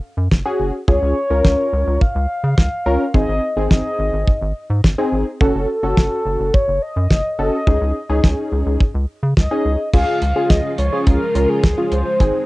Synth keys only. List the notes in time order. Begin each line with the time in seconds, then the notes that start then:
0.45 C#4 F#4 G#4
0.88 C#4 F4 G#4
1.30 C#4 F4 A#4
2.86 C#4 F4 A#4
3.14 C4 D#4 G#4
3.57 C4 D#4 G#4
4.98 C4 D#4 G#4
5.41 C#4 F#4 A4
5.83 C#4 F#4 A4
7.39 C#4 F#4 A4
7.67 C#4 D#4 G#4
8.10 C#4 D#4 G#4
9.51 C#4 D#4 G#4
9.94 C#4 F4 G#4
10.36 C#4 F4 G#4
10.93 C#4 F4 G#4
11.35 C#4 F4 A#4
11.78 C#4 F4 G#4
12.20 C4 D#4 G#4